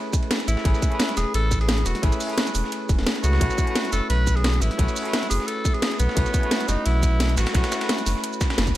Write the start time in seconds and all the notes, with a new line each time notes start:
Already playing: A3 C#4 E4 G#4 B4
0.13 kick, closed hi-hat, ride, shaker
0.23 ride
0.31 snare, closed hi-hat, ride
0.40 snare, closed hi-hat
0.48 A1 E4, closed hi-hat, ride, shaker
0.57 snare
0.64 A1 A3 C#4 E4 G#4 B4, kick, closed hi-hat, ride
0.74 snare, shaker
0.82 kick, closed hi-hat, ride, shaker
0.88 A3 C#4 E4, closed hi-hat
0.93 G#4 B4
0.99 snare, closed hi-hat, ride
1.09 snare, closed hi-hat
1.17 E1 G#4, snare, closed hi-hat, ride, shaker
1.34 A1 A4, closed hi-hat, ride
1.51 kick, closed hi-hat, ride, shaker
1.61 G#4, ride
1.69 snare, closed hi-hat, ride
1.78 closed hi-hat
1.86 E1 F#4, snare, closed hi-hat, ride, shaker
1.95 snare
2.02 A1 A3 C#4 E4 G#4 B4, kick, closed hi-hat, ride
2.12 closed hi-hat, ride, shaker
2.20 closed hi-hat, open hi-hat, shaker
2.27 A3 C#4 E4, closed hi-hat
2.31 G#4 B4
2.38 snare, closed hi-hat, ride
2.47 snare, closed hi-hat, shaker
2.55 E1, open hi-hat, ride, shaker
2.64 snare
2.72 closed hi-hat, ride
2.89 E1, kick, closed hi-hat, ride, shaker
2.99 E1, snare, ride
3.07 snare, closed hi-hat, ride
3.16 snare, closed hi-hat
3.23 C#2 A3 C#4 E4 F#4 G#4 B4, closed hi-hat, ride, shaker
3.33 snare
3.40 B1 A3 C#4 E4 F#4 B4, kick, closed hi-hat, ride
3.50 snare, shaker
3.58 kick, closed hi-hat, ride, shaker
3.65 A3 C#4 E4, closed hi-hat
3.69 F#4 B4
3.75 snare, closed hi-hat, ride
3.85 snare, closed hi-hat
3.92 F#1 A4, snare, closed hi-hat, ride, shaker
4.10 B1 B4, closed hi-hat, ride
4.27 kick, closed hi-hat, ride, shaker
4.36 G#4, ride
4.44 snare, closed hi-hat, ride
4.54 closed hi-hat
4.61 A1 E4, snare, closed hi-hat, ride, shaker
4.71 snare
4.77 B1 A3 C#4 E4 F#4 B4, kick, closed hi-hat, ride
4.88 ride, shaker
4.96 closed hi-hat, open hi-hat, shaker
5.02 A3 C#4 E4, closed hi-hat
5.07 F#4 B4
5.13 snare, closed hi-hat, ride
5.23 snare, closed hi-hat
5.30 F#1 G#4, open hi-hat, ride, shaker
5.40 snare
5.47 A4, closed hi-hat, ride
5.65 kick, closed hi-hat, ride, shaker
5.74 G#4, ride
5.82 snare, closed hi-hat, ride
5.91 snare, closed hi-hat
5.99 B1 B3, closed hi-hat, ride, shaker
6.09 snare
6.15 B1 A3 C#4 E4 F#4 B4, kick, closed hi-hat, ride
6.26 snare, shaker
6.34 kick, closed hi-hat, ride, shaker
6.40 A3 C#4 E4, closed hi-hat
6.45 F#4 B4
6.51 snare, closed hi-hat, ride
6.60 snare, closed hi-hat
6.68 F#1 D#4, snare, closed hi-hat, ride, shaker
6.85 B1 E4, closed hi-hat, ride
7.03 kick, closed hi-hat, ride, shaker
7.20 snare, closed hi-hat, ride
7.29 closed hi-hat
7.37 A1 F#4, snare, closed hi-hat, ride, shaker
7.46 snare, ride
7.53 B1 A3 C#4 E4 F#4 B4, kick, snare, closed hi-hat, ride
7.64 snare, closed hi-hat, ride, shaker
7.72 snare, closed hi-hat, ride, shaker
7.78 A3 C#4 E4, snare, closed hi-hat, ride
7.83 F#4 B4
7.89 snare, closed hi-hat, ride
7.98 snare, closed hi-hat, shaker
8.06 F#1, snare, open hi-hat, ride, shaker
8.16 snare
8.24 closed hi-hat, ride
8.33 shaker
8.41 kick, snare, closed hi-hat, ride, shaker
8.50 snare, ride
8.58 F#1, snare, closed hi-hat, ride
8.67 kick, snare, closed hi-hat, shaker